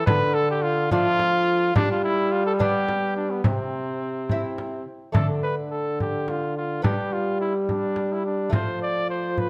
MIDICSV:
0, 0, Header, 1, 5, 480
1, 0, Start_track
1, 0, Tempo, 563910
1, 60, Time_signature, 6, 3, 24, 8
1, 8083, End_track
2, 0, Start_track
2, 0, Title_t, "Cornet"
2, 0, Program_c, 0, 56
2, 54, Note_on_c, 0, 71, 96
2, 288, Note_on_c, 0, 69, 94
2, 301, Note_off_c, 0, 71, 0
2, 413, Note_off_c, 0, 69, 0
2, 430, Note_on_c, 0, 67, 80
2, 530, Note_on_c, 0, 65, 87
2, 543, Note_off_c, 0, 67, 0
2, 772, Note_off_c, 0, 65, 0
2, 784, Note_on_c, 0, 65, 103
2, 1480, Note_off_c, 0, 65, 0
2, 1499, Note_on_c, 0, 62, 97
2, 1612, Note_off_c, 0, 62, 0
2, 1629, Note_on_c, 0, 65, 84
2, 1730, Note_off_c, 0, 65, 0
2, 1735, Note_on_c, 0, 64, 91
2, 1972, Note_on_c, 0, 65, 86
2, 1985, Note_off_c, 0, 64, 0
2, 2091, Note_off_c, 0, 65, 0
2, 2097, Note_on_c, 0, 69, 86
2, 2149, Note_off_c, 0, 69, 0
2, 2217, Note_on_c, 0, 67, 97
2, 2686, Note_off_c, 0, 67, 0
2, 2691, Note_on_c, 0, 62, 73
2, 2814, Note_on_c, 0, 59, 69
2, 2827, Note_off_c, 0, 62, 0
2, 2935, Note_off_c, 0, 59, 0
2, 2940, Note_on_c, 0, 60, 73
2, 4122, Note_off_c, 0, 60, 0
2, 4383, Note_on_c, 0, 69, 67
2, 4492, Note_off_c, 0, 69, 0
2, 4621, Note_on_c, 0, 71, 77
2, 4730, Note_off_c, 0, 71, 0
2, 4859, Note_on_c, 0, 69, 68
2, 5098, Note_off_c, 0, 69, 0
2, 5119, Note_on_c, 0, 67, 70
2, 5357, Note_on_c, 0, 65, 68
2, 5369, Note_off_c, 0, 67, 0
2, 5587, Note_off_c, 0, 65, 0
2, 5592, Note_on_c, 0, 65, 68
2, 5819, Note_off_c, 0, 65, 0
2, 5824, Note_on_c, 0, 67, 73
2, 6068, Note_on_c, 0, 65, 71
2, 6081, Note_off_c, 0, 67, 0
2, 6299, Note_off_c, 0, 65, 0
2, 6304, Note_on_c, 0, 64, 64
2, 6412, Note_off_c, 0, 64, 0
2, 6547, Note_on_c, 0, 62, 70
2, 6915, Note_on_c, 0, 64, 63
2, 6928, Note_off_c, 0, 62, 0
2, 7022, Note_off_c, 0, 64, 0
2, 7028, Note_on_c, 0, 62, 63
2, 7261, Note_off_c, 0, 62, 0
2, 7270, Note_on_c, 0, 72, 72
2, 7502, Note_off_c, 0, 72, 0
2, 7509, Note_on_c, 0, 74, 82
2, 7741, Note_off_c, 0, 74, 0
2, 7749, Note_on_c, 0, 72, 74
2, 7993, Note_on_c, 0, 71, 80
2, 8006, Note_off_c, 0, 72, 0
2, 8083, Note_off_c, 0, 71, 0
2, 8083, End_track
3, 0, Start_track
3, 0, Title_t, "Lute"
3, 0, Program_c, 1, 24
3, 63, Note_on_c, 1, 50, 54
3, 744, Note_off_c, 1, 50, 0
3, 779, Note_on_c, 1, 53, 59
3, 784, Note_on_c, 1, 57, 50
3, 786, Note_on_c, 1, 62, 53
3, 1459, Note_off_c, 1, 53, 0
3, 1460, Note_off_c, 1, 57, 0
3, 1460, Note_off_c, 1, 62, 0
3, 1493, Note_on_c, 1, 55, 54
3, 2208, Note_on_c, 1, 59, 48
3, 2214, Note_on_c, 1, 62, 54
3, 2899, Note_off_c, 1, 59, 0
3, 2901, Note_off_c, 1, 55, 0
3, 2902, Note_off_c, 1, 62, 0
3, 2936, Note_on_c, 1, 48, 46
3, 3670, Note_on_c, 1, 60, 42
3, 3674, Note_on_c, 1, 64, 48
3, 4111, Note_off_c, 1, 48, 0
3, 4356, Note_off_c, 1, 60, 0
3, 4358, Note_off_c, 1, 64, 0
3, 4361, Note_on_c, 1, 57, 38
3, 4370, Note_on_c, 1, 62, 38
3, 4381, Note_on_c, 1, 50, 45
3, 5780, Note_off_c, 1, 57, 0
3, 5785, Note_off_c, 1, 62, 0
3, 5790, Note_off_c, 1, 50, 0
3, 5806, Note_on_c, 1, 59, 39
3, 5817, Note_on_c, 1, 62, 36
3, 5822, Note_on_c, 1, 55, 43
3, 7220, Note_off_c, 1, 59, 0
3, 7225, Note_off_c, 1, 62, 0
3, 7228, Note_off_c, 1, 55, 0
3, 7232, Note_on_c, 1, 57, 39
3, 7241, Note_on_c, 1, 65, 39
3, 7263, Note_on_c, 1, 53, 44
3, 8083, Note_off_c, 1, 53, 0
3, 8083, Note_off_c, 1, 57, 0
3, 8083, Note_off_c, 1, 65, 0
3, 8083, End_track
4, 0, Start_track
4, 0, Title_t, "Trombone"
4, 0, Program_c, 2, 57
4, 55, Note_on_c, 2, 50, 72
4, 772, Note_on_c, 2, 53, 64
4, 784, Note_off_c, 2, 50, 0
4, 1482, Note_off_c, 2, 53, 0
4, 1487, Note_on_c, 2, 55, 72
4, 2904, Note_off_c, 2, 55, 0
4, 2932, Note_on_c, 2, 48, 60
4, 4118, Note_off_c, 2, 48, 0
4, 4380, Note_on_c, 2, 50, 58
4, 5790, Note_off_c, 2, 50, 0
4, 5817, Note_on_c, 2, 55, 58
4, 7231, Note_off_c, 2, 55, 0
4, 7258, Note_on_c, 2, 53, 58
4, 8083, Note_off_c, 2, 53, 0
4, 8083, End_track
5, 0, Start_track
5, 0, Title_t, "Frame drum"
5, 61, Note_on_c, 9, 64, 75
5, 146, Note_off_c, 9, 64, 0
5, 777, Note_on_c, 9, 64, 50
5, 862, Note_off_c, 9, 64, 0
5, 1017, Note_on_c, 9, 64, 47
5, 1102, Note_off_c, 9, 64, 0
5, 1495, Note_on_c, 9, 64, 77
5, 1580, Note_off_c, 9, 64, 0
5, 2214, Note_on_c, 9, 64, 51
5, 2300, Note_off_c, 9, 64, 0
5, 2456, Note_on_c, 9, 64, 44
5, 2541, Note_off_c, 9, 64, 0
5, 2930, Note_on_c, 9, 64, 68
5, 3015, Note_off_c, 9, 64, 0
5, 3655, Note_on_c, 9, 64, 47
5, 3740, Note_off_c, 9, 64, 0
5, 3902, Note_on_c, 9, 64, 43
5, 3987, Note_off_c, 9, 64, 0
5, 4380, Note_on_c, 9, 64, 69
5, 4465, Note_off_c, 9, 64, 0
5, 5110, Note_on_c, 9, 64, 42
5, 5195, Note_off_c, 9, 64, 0
5, 5346, Note_on_c, 9, 64, 43
5, 5431, Note_off_c, 9, 64, 0
5, 5825, Note_on_c, 9, 64, 65
5, 5910, Note_off_c, 9, 64, 0
5, 6545, Note_on_c, 9, 64, 44
5, 6631, Note_off_c, 9, 64, 0
5, 6777, Note_on_c, 9, 64, 41
5, 6862, Note_off_c, 9, 64, 0
5, 7257, Note_on_c, 9, 64, 65
5, 7342, Note_off_c, 9, 64, 0
5, 7981, Note_on_c, 9, 64, 44
5, 8066, Note_off_c, 9, 64, 0
5, 8083, End_track
0, 0, End_of_file